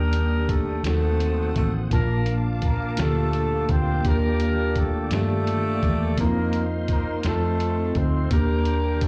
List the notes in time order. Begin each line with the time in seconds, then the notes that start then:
Already playing: D#2 D#3 G3 A#3 D4 G4 A#4 G5 D#6
0.13 closed hi-hat
0.49 A3 A4, kick, closed hi-hat
0.82 D#2 D#3 F#3 A3 A#3 C4 D#4 F#4 A4 C5 F#5, closed hi-hat
0.87 snare
1.20 closed hi-hat
1.56 A1 A3 A4, kick, closed hi-hat
1.90 A#1 A#2 F3 A#3 D4 F4 A#4 F5 A5 D6, kick, closed hi-hat
2.26 closed hi-hat
2.62 A#3 A#4, kick, closed hi-hat
2.96 D2 A#3 D4 F4 G4, snare, closed hi-hat
3.01 A3 D4 F4 A4
3.33 closed hi-hat
3.69 D2 C4 C5, kick, closed hi-hat
4.03 D#2 D#3 G3 A#3 D4 G4 D5 G5, kick, closed hi-hat
4.07 A#3 D4 G4 A#4
4.40 closed hi-hat
4.76 A3 A4, kick, closed hi-hat
5.11 G2 D#3 A3 A#3 D4 G4 A4, snare, closed hi-hat
5.47 closed hi-hat
5.83 E2, kick, closed hi-hat
6.17 F2 F3 A#3 C4 D#4 E4 A#4 C5 F5 C6, kick, closed hi-hat
6.27 F4
6.53 closed hi-hat
6.88 A#3 A#4, kick, closed hi-hat
7.23 F2 A3 C4 D#4 F4 A4 F5, snare, closed hi-hat
7.27 C4 D#4
7.60 closed hi-hat
7.95 D2 C4 C5, kick, closed hi-hat
8.30 D#2 D#3 G3 A#3 D4 G4 A#4 G5 D6, kick, closed hi-hat
8.65 closed hi-hat
9.01 A3 A4, kick, closed hi-hat